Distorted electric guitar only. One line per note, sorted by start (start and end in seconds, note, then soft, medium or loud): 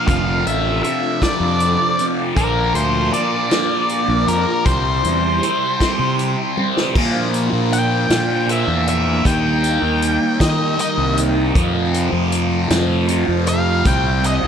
0.06 0.81 F2 medium
0.06 0.83 C3 medium
0.06 0.85 F3 medium
0.82 1.23 F2 medium
0.82 1.22 C3 medium
0.82 1.20 F3 medium
1.21 2.36 F2 medium
1.21 2.00 C3 medium
1.21 1.96 F3 medium
1.98 2.35 C3 soft
1.98 2.34 F3 medium
2.35 3.11 A#2 medium
2.35 3.13 F3 medium
2.35 3.14 A#3 medium
3.12 3.52 A#2 medium
3.12 3.50 F3 medium
3.12 3.49 A#3 medium
3.50 4.64 A#2 medium
3.50 4.29 F3 medium
3.50 4.25 A#3 medium
4.27 4.65 F3 medium
4.27 4.63 A#3 medium
4.65 5.41 C3 medium
4.65 5.43 G3 medium
4.65 5.44 C4 loud
5.42 5.83 C3 medium
5.42 5.81 G3 medium
5.42 5.79 C4 medium
5.80 6.94 C3 medium
5.80 6.59 G3 medium
5.80 6.56 C4 medium
6.57 6.95 G3 medium
6.57 6.93 C4 medium
6.95 8.46 A#2 medium
6.95 8.47 F3 medium
6.95 8.48 A#3 loud
8.47 9.22 A#2 medium
8.47 9.23 F3 medium
8.51 9.24 A#3 medium
9.23 10.75 D#3 medium
9.23 10.76 A#3 loud
9.27 10.77 D#4 loud
10.77 11.52 D#3 medium
10.77 11.53 A#3 medium
10.77 11.54 D#4 medium
11.54 13.05 F2 medium
11.54 13.06 C3 loud
11.54 13.07 F3 loud
13.08 13.83 F2 medium
13.08 13.82 C3 medium
13.08 13.85 F3 medium
13.83 14.47 C3 medium
13.83 14.47 G3 medium
13.83 14.47 C4 loud